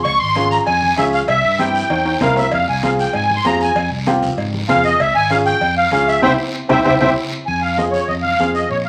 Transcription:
0.04 C#2 C#6, cowbell, long guiro
0.19 G#1 C6
0.35 C#4 F4 G#4, cowbell, high conga, short guiro
0.51 A#5, short guiro
0.66 F2 G#5, cowbell, long guiro
0.82 high conga
0.97 C#2 C#4 F4 G#4 E5, cowbell, high conga, short guiro
1.13 F5, short guiro
1.28 C2 E5, cowbell, long guiro
1.44 G2
1.59 C4 E4 G4 G5, cowbell, high conga, short guiro
1.75 short guiro
1.90 E2, cowbell, high timbale, long guiro
2.05 high timbale
2.21 C2 C4 E4 A#4 F5, cowbell, high conga, low conga, short guiro
2.36 E5, low timbale, short guiro
2.52 F2 F5, cowbell, long guiro
2.68 C2 G#5
2.83 C4 F4 G#4 F5, cowbell, high conga, short guiro
2.99 G5, short guiro
3.13 G#2 G#5, cowbell, long guiro
3.30 high conga
3.35 C6
3.44 F2 C4 F4 G#4 A#5, cowbell, high conga, low timbale, short guiro
3.61 G#5, short guiro
3.76 F2, cowbell, long guiro
3.90 C2
4.07 C4 F4 G4, cowbell, high conga, short guiro
4.22 low conga, short guiro
4.38 G#2, cowbell, long guiro
4.54 high conga
4.69 F2 C4 F4 G#4 F5, cowbell, high conga, low conga, short guiro
4.84 D#5, short guiro
4.99 C#2 E5, cowbell, long guiro
5.15 G#1 G#5
5.30 C#4 F4 G#4 F5, cowbell, high conga, short guiro
5.46 G5, short guiro
5.61 F2, cowbell, long guiro
5.78 F5
5.91 C#2 C#4 F4 G#4 F5, cowbell, high conga, short guiro
6.08 E5, short guiro
6.22 C2 C4 E4 G4 C5 E5 G5, low conga, high timbale, long guiro
6.69 C2 C4 E4 G4 C5 E5 G5, low conga, high timbale, long guiro
6.84 C2 C4 E4 G4 C5 E5 G5, low conga, high timbale, long guiro
6.99 C2 C4 E4 G4 C5 E5 G5, low conga, high timbale, long guiro
7.46 F2 G#5, long guiro
7.62 F5
7.78 C4 F4 G#4 D#5, high conga, short guiro
7.91 C#5, short guiro
8.08 F2 D#5, long guiro
8.22 F5, high conga
8.39 F2 C4 F4 G#4, high conga, short guiro
8.55 D#5, short guiro
8.70 A#1 C#5, long guiro
8.85 F5

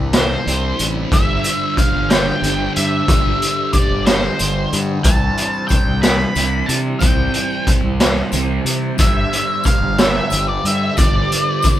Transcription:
Already playing: C2 C3 E3 G3 C4 D4 B5
0.13 snare, closed hi-hat
0.17 C5
0.46 C2 C3 G3 C4, closed hi-hat
0.79 A1, closed hi-hat
1.11 G1 G2 D3 G3 D4 C5 E5, kick, closed hi-hat
1.44 closed hi-hat
1.77 F5, kick, closed hi-hat
1.93 G1
2.10 G5, snare, closed hi-hat
2.42 G1 G2 D3 G3, closed hi-hat
2.76 G2 E5, closed hi-hat
3.08 G1 G2 D3 G3, kick, closed hi-hat
3.42 closed hi-hat
3.73 D5, kick, closed hi-hat
3.91 G1
4.06 C5, snare, closed hi-hat
4.39 G1 G2 D3 G3, closed hi-hat
4.73 G2, closed hi-hat
5.03 C2 C3 E3 G3 C4 A5, kick, closed hi-hat, tambourine
5.37 closed hi-hat
5.53 tambourine
5.68 G5, kick, closed hi-hat, tambourine
5.86 C2
6.02 B5, snare, closed hi-hat
6.35 C2 C3 G3 C4, closed hi-hat, tambourine
6.66 C3 A5, closed hi-hat
6.99 C2 C3 G3 C4 G5, kick, closed hi-hat, tambourine
7.34 closed hi-hat
7.50 tambourine
7.67 kick, closed hi-hat
7.83 C2
8.00 snare, closed hi-hat
8.32 C2 C3 G3 C4, closed hi-hat, tambourine
8.65 C3, closed hi-hat
8.97 G1 G2 D3 G3 D4 C5 E5, kick, closed hi-hat, tambourine
9.33 closed hi-hat
9.48 tambourine
9.63 F5, kick, closed hi-hat, tambourine
9.81 G1
9.98 E5, snare, closed hi-hat
10.30 G1 G2 D3 G3, closed hi-hat, tambourine
10.48 D5
10.64 G2 E5, closed hi-hat
10.97 G1 G2 D3 G3 D5, kick, closed hi-hat, tambourine
11.32 closed hi-hat
11.62 kick, closed hi-hat, tambourine

